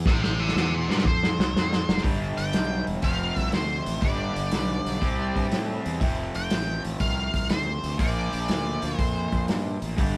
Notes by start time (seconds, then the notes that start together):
0.06 A1 E5 G5, kick, snare
0.23 E5 G5, snare
0.39 C5 E5
0.48 snare
0.55 E2 C5 E5, snare
0.74 A#4 D5
0.89 G2 A#4 D5, snare
0.98 snare
1.05 F2 C5, kick
1.23 snare
1.39 C2, snare
1.54 F2, snare
1.73 snare
1.89 F1, snare
1.97 snare
2.04 G1 G2 D3 G3, kick, open hi-hat
2.38 G1 G5, open hi-hat
2.53 B1, snare, open hi-hat
2.87 E1, open hi-hat
3.02 F1 F2 C3 F3 F5, kick, open hi-hat
3.36 C2 E5, kick, open hi-hat
3.52 D2 C5, snare, open hi-hat
3.86 A1, open hi-hat
4.01 G1 G2 D3 G3 D5, kick, open hi-hat
4.36 G1, open hi-hat
4.51 B1, snare, open hi-hat
4.86 B1, open hi-hat
5.01 C2 C3 G3 C4, kick, open hi-hat
5.36 G2, kick, open hi-hat
5.51 A2, snare, open hi-hat
5.86 E2, open hi-hat
6.00 F1 F2 C3 F3, kick, open hi-hat
6.34 F1 G5, open hi-hat
6.50 A1, snare, open hi-hat
6.84 A1, open hi-hat
7.00 C2 F5, kick, open hi-hat
7.34 C2, kick, open hi-hat
7.49 D2 C5, snare, open hi-hat
7.84 D2, open hi-hat
7.98 A#1 A#2 F3 A#3 D5, kick, open hi-hat
8.33 A#1, open hi-hat
8.48 D2, snare, open hi-hat
8.82 D2, open hi-hat
8.97 F2 C5, kick, open hi-hat
9.32 F2, kick, open hi-hat
9.48 G2, snare, open hi-hat
9.82 A1, open hi-hat
9.97 G1 G2 D3 G3, kick, open hi-hat